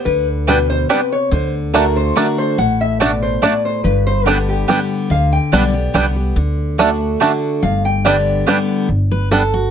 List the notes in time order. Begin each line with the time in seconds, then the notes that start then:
0.05 D2 D3 B4
0.47 B2 G3 B3 D4 G4 B4 D5 G5
0.70 C5
0.89 C3 G3 B3 D4 G4 B4 D5 G5
1.12 C#5
1.31 D2 D3 C5
1.73 D3 A3 D4 F#4 A#4 D5 A5
1.96 C5
2.15 D3 A3 D4 F#4 A#4 D5 A5
2.38 C5
2.58 A1 A2 F#5
2.81 E5
3.00 B2 A3 D4 F#4 D5 A5
3.22 C5
3.42 A2 A3 D4 F#4 D5 A5
3.65 C5
3.84 G1 G2 B4
4.07 C5
4.25 D3 G3 B3 D4 G4 A4 D5 G5
4.49 G4
4.68 D3 G3 B3 D4 G4 D5 G5
5.10 D2 D3 F5
5.33 G5
5.52 B1 D3 G3 B3 D4 G4 D5 G5
5.74 B3 G4
5.93 C2 D3 G3 B3 D4 G4 D5 G5
6.16 B3 G4
6.36 D2 D3
6.78 D3 A3 D4 F#4 D5 A5
7.20 D3 A3 D4 F#4 D5 A5
7.62 G1 G2 F5
7.85 G5
8.05 D3 G3 B3 D4 G4 D5 G5
8.47 D3 G3 B3 D4 G4 D5 G5
8.89 G1
9.11 B4
9.31 G3 B3 D4 A4
9.53 F#4